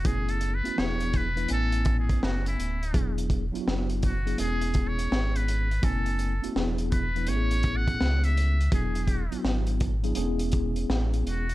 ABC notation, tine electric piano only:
X:1
M:4/4
L:1/16
Q:"Swing 16ths" 1/4=83
K:Emix
V:1 name="Tine electric piano"
[A,B,CEG]3 [A,B,CEF] [=F,B,DEG]3 [F,B,DEB] [A,B,CEg]6- [A,B,CEg] z | [F,B,DEG]3 [F,B,DE^EF]3 z [F,B,D=EG] [G,B,CEG]6- [G,B,CEG] z | [A,B,CEg]3 [A,B,CEF] [=F,B,DEG]3 [F,B,DEB] [A,B,CE=G^G]6- [A,B,CE=G^G] z | [F,B,DEG]3 [F,B,DE^EF]3 z [F,B,D=EG] [G,B,CDEG]6- [G,B,CDEG] z |]